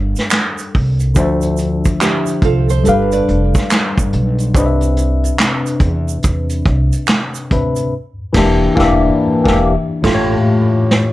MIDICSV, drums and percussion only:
0, 0, Header, 1, 2, 480
1, 0, Start_track
1, 0, Tempo, 845070
1, 661, Time_signature, 4, 2, 24, 8
1, 6320, End_track
2, 0, Start_track
2, 0, Title_t, "Drums"
2, 90, Note_on_c, 9, 82, 40
2, 92, Note_on_c, 9, 42, 48
2, 104, Note_on_c, 9, 38, 38
2, 147, Note_off_c, 9, 82, 0
2, 149, Note_off_c, 9, 42, 0
2, 161, Note_off_c, 9, 38, 0
2, 173, Note_on_c, 9, 26, 65
2, 173, Note_on_c, 9, 82, 65
2, 181, Note_on_c, 9, 39, 83
2, 181, Note_on_c, 9, 42, 91
2, 184, Note_on_c, 9, 38, 122
2, 229, Note_off_c, 9, 26, 0
2, 229, Note_off_c, 9, 82, 0
2, 238, Note_off_c, 9, 39, 0
2, 238, Note_off_c, 9, 42, 0
2, 241, Note_off_c, 9, 38, 0
2, 330, Note_on_c, 9, 82, 53
2, 335, Note_on_c, 9, 42, 48
2, 387, Note_off_c, 9, 82, 0
2, 392, Note_off_c, 9, 42, 0
2, 422, Note_on_c, 9, 46, 46
2, 425, Note_on_c, 9, 36, 87
2, 479, Note_off_c, 9, 46, 0
2, 482, Note_off_c, 9, 36, 0
2, 566, Note_on_c, 9, 42, 48
2, 567, Note_on_c, 9, 82, 41
2, 623, Note_off_c, 9, 42, 0
2, 623, Note_off_c, 9, 82, 0
2, 656, Note_on_c, 9, 82, 69
2, 657, Note_on_c, 9, 42, 70
2, 659, Note_on_c, 9, 36, 110
2, 713, Note_off_c, 9, 42, 0
2, 713, Note_off_c, 9, 82, 0
2, 716, Note_off_c, 9, 36, 0
2, 803, Note_on_c, 9, 82, 50
2, 808, Note_on_c, 9, 42, 54
2, 860, Note_off_c, 9, 82, 0
2, 865, Note_off_c, 9, 42, 0
2, 891, Note_on_c, 9, 82, 45
2, 899, Note_on_c, 9, 42, 70
2, 948, Note_off_c, 9, 82, 0
2, 956, Note_off_c, 9, 42, 0
2, 1050, Note_on_c, 9, 42, 47
2, 1050, Note_on_c, 9, 82, 52
2, 1053, Note_on_c, 9, 36, 77
2, 1107, Note_off_c, 9, 42, 0
2, 1107, Note_off_c, 9, 82, 0
2, 1110, Note_off_c, 9, 36, 0
2, 1141, Note_on_c, 9, 42, 72
2, 1142, Note_on_c, 9, 39, 82
2, 1143, Note_on_c, 9, 26, 65
2, 1143, Note_on_c, 9, 82, 69
2, 1144, Note_on_c, 9, 38, 100
2, 1198, Note_off_c, 9, 39, 0
2, 1198, Note_off_c, 9, 42, 0
2, 1200, Note_off_c, 9, 26, 0
2, 1200, Note_off_c, 9, 82, 0
2, 1201, Note_off_c, 9, 38, 0
2, 1285, Note_on_c, 9, 82, 44
2, 1296, Note_on_c, 9, 42, 46
2, 1342, Note_off_c, 9, 82, 0
2, 1353, Note_off_c, 9, 42, 0
2, 1374, Note_on_c, 9, 42, 69
2, 1375, Note_on_c, 9, 36, 94
2, 1431, Note_off_c, 9, 42, 0
2, 1432, Note_off_c, 9, 36, 0
2, 1528, Note_on_c, 9, 42, 46
2, 1531, Note_on_c, 9, 82, 44
2, 1585, Note_off_c, 9, 42, 0
2, 1588, Note_off_c, 9, 82, 0
2, 1617, Note_on_c, 9, 42, 75
2, 1625, Note_on_c, 9, 82, 65
2, 1673, Note_off_c, 9, 42, 0
2, 1681, Note_off_c, 9, 82, 0
2, 1770, Note_on_c, 9, 42, 50
2, 1771, Note_on_c, 9, 82, 42
2, 1827, Note_off_c, 9, 42, 0
2, 1828, Note_off_c, 9, 82, 0
2, 1865, Note_on_c, 9, 42, 57
2, 1921, Note_off_c, 9, 42, 0
2, 2016, Note_on_c, 9, 36, 94
2, 2016, Note_on_c, 9, 82, 46
2, 2019, Note_on_c, 9, 42, 47
2, 2031, Note_on_c, 9, 38, 36
2, 2072, Note_off_c, 9, 82, 0
2, 2073, Note_off_c, 9, 36, 0
2, 2076, Note_off_c, 9, 42, 0
2, 2088, Note_off_c, 9, 38, 0
2, 2104, Note_on_c, 9, 26, 65
2, 2104, Note_on_c, 9, 82, 67
2, 2108, Note_on_c, 9, 42, 88
2, 2109, Note_on_c, 9, 39, 91
2, 2111, Note_on_c, 9, 38, 123
2, 2161, Note_off_c, 9, 26, 0
2, 2161, Note_off_c, 9, 82, 0
2, 2165, Note_off_c, 9, 42, 0
2, 2166, Note_off_c, 9, 39, 0
2, 2168, Note_off_c, 9, 38, 0
2, 2258, Note_on_c, 9, 36, 89
2, 2258, Note_on_c, 9, 42, 49
2, 2265, Note_on_c, 9, 82, 56
2, 2314, Note_off_c, 9, 42, 0
2, 2315, Note_off_c, 9, 36, 0
2, 2322, Note_off_c, 9, 82, 0
2, 2344, Note_on_c, 9, 42, 76
2, 2401, Note_off_c, 9, 42, 0
2, 2489, Note_on_c, 9, 42, 50
2, 2499, Note_on_c, 9, 82, 46
2, 2546, Note_off_c, 9, 42, 0
2, 2555, Note_off_c, 9, 82, 0
2, 2582, Note_on_c, 9, 36, 111
2, 2583, Note_on_c, 9, 42, 75
2, 2591, Note_on_c, 9, 82, 70
2, 2639, Note_off_c, 9, 36, 0
2, 2640, Note_off_c, 9, 42, 0
2, 2648, Note_off_c, 9, 82, 0
2, 2730, Note_on_c, 9, 42, 57
2, 2741, Note_on_c, 9, 82, 50
2, 2787, Note_off_c, 9, 42, 0
2, 2797, Note_off_c, 9, 82, 0
2, 2821, Note_on_c, 9, 42, 71
2, 2832, Note_on_c, 9, 82, 43
2, 2877, Note_off_c, 9, 42, 0
2, 2889, Note_off_c, 9, 82, 0
2, 2974, Note_on_c, 9, 42, 44
2, 2984, Note_on_c, 9, 82, 52
2, 3031, Note_off_c, 9, 42, 0
2, 3041, Note_off_c, 9, 82, 0
2, 3062, Note_on_c, 9, 39, 77
2, 3062, Note_on_c, 9, 42, 79
2, 3065, Note_on_c, 9, 38, 101
2, 3075, Note_on_c, 9, 26, 65
2, 3075, Note_on_c, 9, 82, 67
2, 3119, Note_off_c, 9, 39, 0
2, 3119, Note_off_c, 9, 42, 0
2, 3122, Note_off_c, 9, 38, 0
2, 3132, Note_off_c, 9, 26, 0
2, 3132, Note_off_c, 9, 82, 0
2, 3217, Note_on_c, 9, 42, 48
2, 3217, Note_on_c, 9, 82, 41
2, 3274, Note_off_c, 9, 42, 0
2, 3274, Note_off_c, 9, 82, 0
2, 3292, Note_on_c, 9, 42, 74
2, 3295, Note_on_c, 9, 36, 86
2, 3349, Note_off_c, 9, 42, 0
2, 3351, Note_off_c, 9, 36, 0
2, 3450, Note_on_c, 9, 42, 44
2, 3456, Note_on_c, 9, 82, 45
2, 3507, Note_off_c, 9, 42, 0
2, 3513, Note_off_c, 9, 82, 0
2, 3535, Note_on_c, 9, 42, 73
2, 3545, Note_on_c, 9, 36, 85
2, 3545, Note_on_c, 9, 82, 67
2, 3592, Note_off_c, 9, 42, 0
2, 3601, Note_off_c, 9, 82, 0
2, 3602, Note_off_c, 9, 36, 0
2, 3688, Note_on_c, 9, 42, 49
2, 3692, Note_on_c, 9, 82, 39
2, 3745, Note_off_c, 9, 42, 0
2, 3749, Note_off_c, 9, 82, 0
2, 3780, Note_on_c, 9, 36, 88
2, 3783, Note_on_c, 9, 42, 59
2, 3837, Note_off_c, 9, 36, 0
2, 3840, Note_off_c, 9, 42, 0
2, 3933, Note_on_c, 9, 82, 42
2, 3934, Note_on_c, 9, 42, 49
2, 3990, Note_off_c, 9, 42, 0
2, 3990, Note_off_c, 9, 82, 0
2, 4016, Note_on_c, 9, 26, 62
2, 4016, Note_on_c, 9, 82, 60
2, 4023, Note_on_c, 9, 42, 89
2, 4024, Note_on_c, 9, 39, 91
2, 4026, Note_on_c, 9, 38, 112
2, 4072, Note_off_c, 9, 26, 0
2, 4072, Note_off_c, 9, 82, 0
2, 4080, Note_off_c, 9, 42, 0
2, 4081, Note_off_c, 9, 39, 0
2, 4083, Note_off_c, 9, 38, 0
2, 4173, Note_on_c, 9, 82, 54
2, 4175, Note_on_c, 9, 42, 50
2, 4229, Note_off_c, 9, 82, 0
2, 4231, Note_off_c, 9, 42, 0
2, 4263, Note_on_c, 9, 42, 72
2, 4266, Note_on_c, 9, 36, 84
2, 4320, Note_off_c, 9, 42, 0
2, 4323, Note_off_c, 9, 36, 0
2, 4406, Note_on_c, 9, 42, 52
2, 4408, Note_on_c, 9, 82, 45
2, 4463, Note_off_c, 9, 42, 0
2, 4464, Note_off_c, 9, 82, 0
2, 4737, Note_on_c, 9, 49, 78
2, 4740, Note_on_c, 9, 36, 108
2, 4749, Note_on_c, 9, 38, 102
2, 4794, Note_off_c, 9, 49, 0
2, 4797, Note_off_c, 9, 36, 0
2, 4806, Note_off_c, 9, 38, 0
2, 4981, Note_on_c, 9, 36, 110
2, 4995, Note_on_c, 9, 38, 96
2, 5038, Note_off_c, 9, 36, 0
2, 5051, Note_off_c, 9, 38, 0
2, 5370, Note_on_c, 9, 36, 104
2, 5385, Note_on_c, 9, 38, 105
2, 5427, Note_off_c, 9, 36, 0
2, 5441, Note_off_c, 9, 38, 0
2, 5702, Note_on_c, 9, 36, 102
2, 5705, Note_on_c, 9, 49, 78
2, 5717, Note_on_c, 9, 38, 100
2, 5759, Note_off_c, 9, 36, 0
2, 5761, Note_off_c, 9, 49, 0
2, 5774, Note_off_c, 9, 38, 0
2, 6197, Note_on_c, 9, 38, 101
2, 6254, Note_off_c, 9, 38, 0
2, 6320, End_track
0, 0, End_of_file